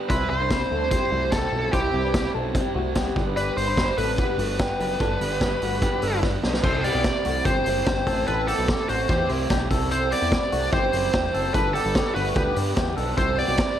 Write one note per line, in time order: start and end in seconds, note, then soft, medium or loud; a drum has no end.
0.00 0.10 B3 soft
0.09 0.27 C2 loud
0.09 0.30 C3 medium
0.09 0.31 G3 medium
0.09 0.30 C4 medium
0.09 0.39 E4 medium
0.09 0.28 E4 medium
0.09 0.29 B4 medium
0.09 0.39 C5 medium
0.09 kick medium
0.09 closed hi-hat medium
0.29 0.65 C2 medium
0.29 0.49 G3 soft
0.29 0.50 C4 soft
0.29 0.50 E4 soft
0.29 0.87 C5 medium
0.41 0.70 D4 soft
0.41 0.69 B5 medium
0.50 0.71 C3 medium
0.50 0.71 G3 medium
0.50 0.71 C4 medium
0.50 0.69 E4 medium
0.50 kick medium
0.50 snare medium
0.50 closed hi-hat medium
0.71 0.97 D2 medium
0.71 0.91 G3 soft
0.71 0.91 C4 medium
0.71 0.92 C4 soft
0.71 0.91 E4 soft
0.71 0.91 A4 medium
0.91 1.12 C3 medium
0.91 1.12 G3 medium
0.91 1.12 C4 medium
0.91 1.10 E4 medium
0.91 1.12 G4 medium
0.91 1.29 C5 medium
0.91 kick loud
0.91 closed hi-hat medium
1.12 1.47 C2 medium
1.12 1.31 G3 soft
1.12 1.33 A3 medium
1.12 1.32 C4 soft
1.12 1.32 E4 medium
1.12 1.33 F#4 medium
1.32 1.52 C3 medium
1.32 1.53 G3 medium
1.32 1.53 C4 medium
1.32 1.71 C4 medium
1.32 1.51 E4 medium
1.32 1.71 G4 medium
1.32 1.72 A4 medium
1.32 kick loud
1.32 snare medium
1.32 closed hi-hat medium
1.52 1.70 B1 medium
1.52 1.72 G3 soft
1.52 1.73 C4 soft
1.52 1.73 E4 soft
1.72 1.90 C2 medium
1.72 1.93 C3 medium
1.72 1.94 G3 medium
1.72 1.94 C4 medium
1.72 2.03 E4 medium
1.72 1.92 E4 medium
1.72 2.30 G4 medium
1.72 2.02 C5 medium
1.72 kick medium
1.72 closed hi-hat medium
1.93 2.28 C2 medium
1.93 2.13 G3 soft
1.93 2.14 C4 soft
1.93 2.14 E4 soft
2.04 2.33 D4 soft
2.04 2.33 B4 medium
2.14 2.34 C3 medium
2.14 2.35 G3 medium
2.14 2.34 C4 medium
2.14 2.33 E4 medium
2.14 kick medium
2.14 snare loud
2.14 closed hi-hat medium
2.34 2.61 B1 medium
2.34 2.55 G3 soft
2.34 2.55 C4 medium
2.34 2.55 E4 medium
2.34 2.55 A4 medium
2.55 2.75 C3 medium
2.55 2.76 G3 medium
2.55 2.76 C4 medium
2.55 2.74 E4 medium
2.55 2.75 G4 medium
2.55 kick medium
2.55 closed hi-hat medium
2.75 3.10 C2 medium
2.75 2.95 G3 soft
2.75 2.96 A3 medium
2.75 2.96 C4 medium
2.75 2.96 E4 medium
2.75 2.95 F#4 medium
2.95 3.16 C3 medium
2.95 3.16 G3 medium
2.95 3.35 B3 medium
2.95 3.17 C4 medium
2.95 3.15 E4 medium
2.95 3.34 G4 medium
2.95 kick loud
2.95 snare medium
2.95 closed hi-hat medium
3.16 3.51 G1 loud
3.16 3.36 G3 soft
3.16 3.36 B3 medium
3.16 3.36 D4 medium
3.16 kick medium
3.36 3.57 G2 medium
3.36 3.57 D3 medium
3.36 3.57 G3 medium
3.36 3.56 B3 medium
3.36 3.55 D4 medium
3.36 3.66 G4 medium
3.36 3.56 B4 medium
3.36 3.65 D5 medium
3.36 closed hi-hat medium
3.56 3.92 G1 medium
3.56 3.77 G3 soft
3.56 3.77 B3 soft
3.56 3.77 D4 soft
3.56 3.95 C5 medium
3.56 open hi-hat medium
3.67 3.97 D4 soft
3.67 3.96 B5 medium
3.77 3.97 G2 medium
3.77 3.98 D3 medium
3.77 3.98 G3 medium
3.77 3.98 B3 medium
3.77 3.96 D4 medium
3.77 kick medium
3.77 snare medium
3.77 closed hi-hat medium
3.97 4.24 A1 medium
3.97 4.17 G3 soft
3.97 4.18 B3 soft
3.97 4.19 C4 medium
3.97 4.18 D4 soft
3.97 4.18 A4 medium
3.97 6.19 B4 medium
3.97 open hi-hat medium
4.17 4.38 D3 medium
4.17 4.39 G3 medium
4.17 4.39 B3 medium
4.17 4.37 D4 medium
4.17 4.39 G4 medium
4.17 kick medium
4.17 closed hi-hat medium
4.38 4.73 G1 medium
4.38 4.59 G3 soft
4.38 4.60 A3 medium
4.38 4.59 B3 soft
4.38 4.59 D4 soft
4.38 4.59 F#4 medium
4.38 open hi-hat medium
4.59 4.80 G2 medium
4.59 4.80 D3 medium
4.59 4.80 G3 medium
4.59 4.98 B3 medium
4.59 4.80 B3 medium
4.59 4.78 D4 medium
4.59 4.98 G4 medium
4.59 kick loud
4.59 snare medium
4.59 closed hi-hat medium
4.80 4.97 F#1 loud
4.80 4.99 G3 soft
4.80 5.00 B3 medium
4.80 5.00 D4 medium
4.80 open hi-hat medium
4.99 5.18 G1 loud
4.99 5.20 G2 medium
4.99 5.21 D3 medium
4.99 5.21 G3 medium
4.99 5.20 B3 medium
4.99 5.18 D4 medium
4.99 5.30 D4 medium
4.99 5.29 A4 medium
4.99 kick medium
4.99 closed hi-hat medium
5.19 5.55 G1 medium
5.19 5.40 G3 soft
5.19 5.40 B3 soft
5.19 5.40 D4 medium
5.19 open hi-hat medium
5.31 5.60 B3 medium
5.31 5.60 G4 medium
5.40 5.61 G2 medium
5.40 5.61 D3 medium
5.40 5.62 G3 medium
5.40 5.60 B3 medium
5.40 5.59 D4 medium
5.40 kick medium
5.40 snare medium
5.40 closed hi-hat medium
5.60 5.88 G1 medium
5.60 5.80 G3 soft
5.60 5.83 A3 soft
5.60 5.81 B3 medium
5.60 5.81 D4 medium
5.60 5.82 F#4 medium
5.60 open hi-hat medium
5.80 6.02 D3 medium
5.80 6.02 G3 medium
5.80 6.01 B3 medium
5.80 6.03 B3 medium
5.80 5.99 D4 medium
5.80 6.03 G4 medium
5.80 kick loud
5.80 closed hi-hat medium
6.01 6.37 G1 medium
6.01 6.22 G3 soft
6.01 6.22 B3 soft
6.01 6.24 C4 medium
6.01 6.22 D4 medium
6.01 6.23 A4 medium
6.01 open hi-hat medium
6.22 6.43 G2 medium
6.22 6.43 D3 medium
6.22 6.43 G3 medium
6.22 6.43 B3 medium
6.22 6.41 D4 medium
6.22 6.62 D4 medium
6.22 6.62 B4 medium
6.22 kick loud
6.22 snare soft
6.42 6.61 B1 medium
6.42 6.63 G3 soft
6.42 6.64 B3 soft
6.42 6.63 D4 medium
6.42 snare medium
6.54 snare medium
6.63 6.90 C2 medium
6.63 6.84 C3 medium
6.63 6.84 G3 medium
6.63 6.83 C4 medium
6.63 6.85 C4 medium
6.63 6.81 E4 medium
6.63 6.85 A4 medium
6.63 6.83 C5 loud
6.63 kick loud
6.63 crash medium
6.83 7.04 G3 soft
6.83 7.23 B3 medium
6.83 7.05 C4 soft
6.83 7.04 E4 soft
6.83 7.23 G4 medium
6.83 7.48 D5 medium
6.83 open hi-hat medium
6.95 7.12 B1 medium
7.04 7.25 C3 medium
7.04 7.25 G3 medium
7.04 7.24 C4 medium
7.04 7.23 E4 medium
7.04 kick loud
7.04 snare medium
7.04 closed hi-hat medium
7.24 7.43 C2 medium
7.24 7.44 G3 soft
7.24 7.46 A3 soft
7.24 7.45 C4 soft
7.24 7.45 E4 soft
7.24 7.46 F#4 medium
7.24 open hi-hat medium
7.44 7.63 G1 loud
7.44 7.65 C3 medium
7.44 7.66 G3 medium
7.44 7.65 C4 medium
7.44 7.85 C4 medium
7.44 7.64 E4 medium
7.44 7.84 G4 medium
7.44 8.27 C5 medium
7.44 kick loud
7.44 closed hi-hat medium
7.65 7.83 F#1 medium
7.65 7.85 G3 soft
7.65 7.86 C4 soft
7.65 7.86 E4 medium
7.65 open hi-hat medium
7.85 8.04 G1 medium
7.85 8.06 C3 medium
7.85 8.07 G3 medium
7.85 8.06 C4 medium
7.85 8.07 C4 medium
7.85 8.04 E4 medium
7.85 8.07 G4 medium
7.85 kick loud
7.85 snare loud
7.85 closed hi-hat medium
8.06 8.24 A1 medium
8.06 8.27 A3 medium
8.06 8.27 C4 medium
8.06 8.27 E4 medium
8.06 8.27 A4 medium
8.06 kick medium
8.06 open hi-hat medium
8.27 8.54 A1 loud
8.27 8.48 A2 medium
8.27 8.48 E3 medium
8.27 8.48 A3 medium
8.27 8.47 C4 medium
8.27 8.48 C4 medium
8.27 8.46 E4 medium
8.27 8.48 A4 medium
8.27 8.48 B4 medium
8.27 closed hi-hat medium
8.47 8.67 A3 soft
8.47 8.87 B3 medium
8.47 8.68 C4 soft
8.47 8.68 E4 soft
8.47 8.87 G4 medium
8.47 8.89 A4 medium
8.47 open hi-hat medium
8.59 8.76 B1 medium
8.67 8.88 E3 soft
8.67 8.89 A3 medium
8.67 8.88 C4 medium
8.67 8.86 E4 medium
8.67 kick loud
8.67 snare loud
8.67 closed hi-hat medium
8.87 9.06 A1 medium
8.87 9.10 A3 medium
8.87 9.08 A3 soft
8.87 9.09 C4 soft
8.87 9.08 E4 soft
8.87 9.09 F#4 medium
8.87 9.27 C5 medium
8.87 open hi-hat medium
9.08 9.27 E2 loud
9.08 9.29 A2 medium
9.08 9.29 E3 medium
9.08 9.30 A3 medium
9.08 9.29 C4 medium
9.08 9.48 C4 medium
9.08 9.27 E4 medium
9.08 9.48 G4 medium
9.08 kick loud
9.08 closed hi-hat medium
9.29 9.47 C2 medium
9.29 9.49 A3 soft
9.29 9.50 C4 soft
9.29 9.50 E4 medium
9.29 open hi-hat medium
9.49 9.68 B1 medium
9.49 9.70 E3 medium
9.49 9.71 A3 medium
9.49 9.70 C4 medium
9.49 9.69 E4 medium
9.49 9.70 G4 medium
9.49 kick loud
9.49 snare loud
9.49 closed hi-hat medium
9.70 10.14 C2 loud
9.70 9.89 G3 medium
9.70 9.91 C4 medium
9.70 9.90 C4 medium
9.70 9.91 E4 medium
9.70 9.90 A4 medium
9.70 kick medium
9.70 open hi-hat medium
9.90 10.11 C3 medium
9.90 10.11 G3 medium
9.90 10.11 C4 medium
9.90 10.12 C4 medium
9.90 10.09 E4 medium
9.90 10.11 A4 medium
9.90 10.12 C5 loud
9.90 closed hi-hat medium
10.11 10.30 G3 soft
10.11 10.50 B3 medium
10.11 10.32 C4 soft
10.11 10.31 E4 medium
10.11 10.50 G4 medium
10.11 10.69 D5 loud
10.11 open hi-hat medium
10.22 10.39 E2 medium
10.31 10.52 C3 medium
10.31 10.52 G3 medium
10.31 10.52 C4 medium
10.31 10.51 E4 medium
10.31 kick loud
10.31 snare loud
10.31 closed hi-hat medium
10.52 10.70 C2 medium
10.52 10.72 G3 soft
10.52 10.73 A3 medium
10.52 10.73 C4 soft
10.52 10.72 E4 medium
10.52 10.72 F#4 medium
10.52 open hi-hat medium
10.72 10.90 G1 medium
10.72 10.93 C3 medium
10.72 10.93 G3 medium
10.72 11.12 C4 medium
10.72 10.93 C4 medium
10.72 10.92 E4 medium
10.72 11.11 G4 medium
10.72 11.54 C5 medium
10.72 kick loud
10.72 closed hi-hat medium
10.93 11.10 F#1 medium
10.93 11.13 G3 soft
10.93 11.14 C4 soft
10.93 11.13 E4 medium
10.93 open hi-hat medium
11.13 11.31 E1 medium
11.13 11.34 C3 medium
11.13 11.34 G3 medium
11.13 11.34 C4 medium
11.13 11.32 E4 medium
11.13 11.34 G4 medium
11.13 kick loud
11.13 snare loud
11.13 closed hi-hat medium
11.33 11.52 F#1 medium
11.33 11.54 G3 medium
11.33 11.55 C4 medium
11.33 11.54 E4 medium
11.33 11.54 A4 medium
11.33 open hi-hat medium
11.54 11.80 G1 medium
11.54 11.74 G2 medium
11.54 11.75 D3 medium
11.54 11.75 G3 medium
11.54 11.74 B3 medium
11.54 11.75 D4 medium
11.54 11.73 D4 medium
11.54 11.74 A4 medium
11.54 11.73 B4 medium
11.54 kick loud
11.54 closed hi-hat medium
11.74 11.94 G3 soft
11.74 12.13 B3 medium
11.74 11.95 B3 soft
11.74 11.95 D4 soft
11.74 12.13 G4 medium
11.74 12.14 A4 medium
11.74 open hi-hat medium
11.85 12.02 G1 medium
11.94 12.15 D3 medium
11.94 12.16 G3 medium
11.94 12.15 B3 medium
11.94 12.13 D4 medium
11.94 kick loud
11.94 snare loud
11.94 closed hi-hat medium
12.15 12.33 G1 medium
12.15 12.35 G3 soft
12.15 12.36 A3 medium
12.15 12.35 B3 soft
12.15 12.35 D4 medium
12.15 12.36 F#4 medium
12.15 12.53 B4 medium
12.15 open hi-hat medium
12.35 12.53 D2 medium
12.35 12.56 G2 medium
12.35 12.56 D3 medium
12.35 12.57 G3 medium
12.35 12.56 B3 medium
12.35 12.75 B3 medium
12.35 12.55 D4 medium
12.35 12.74 G4 medium
12.35 kick loud
12.35 closed hi-hat medium
12.56 12.74 G2 medium
12.56 12.76 G3 soft
12.56 12.77 B3 soft
12.56 12.77 D4 medium
12.56 open hi-hat medium
12.76 12.94 E2 medium
12.76 12.97 D3 medium
12.76 12.97 G3 medium
12.76 12.97 B3 medium
12.76 12.95 D4 medium
12.76 12.96 G4 medium
12.76 kick loud
12.76 snare loud
12.76 closed hi-hat medium
12.97 13.15 B1 medium
12.97 13.17 G3 soft
12.97 13.18 B3 medium
12.97 13.17 C4 medium
12.97 13.17 D4 medium
12.97 13.16 A4 medium
12.97 open hi-hat medium
13.17 13.44 C2 loud
13.17 13.38 C3 medium
13.17 13.38 G3 medium
13.17 13.38 C4 medium
13.17 13.37 E4 medium
13.17 13.37 A4 medium
13.17 13.37 C5 medium
13.17 kick loud
13.17 closed hi-hat medium
13.38 13.58 G3 soft
13.38 13.77 B3 medium
13.38 13.59 C4 medium
13.38 13.58 E4 medium
13.38 13.76 G4 medium
13.38 13.79 D5 loud
13.38 open hi-hat medium
13.48 13.65 B1 medium
13.57 13.78 C3 medium
13.57 13.79 G3 medium
13.57 13.79 C4 medium
13.57 13.77 E4 medium
13.57 kick loud
13.57 snare loud
13.57 clap medium
13.57 closed hi-hat medium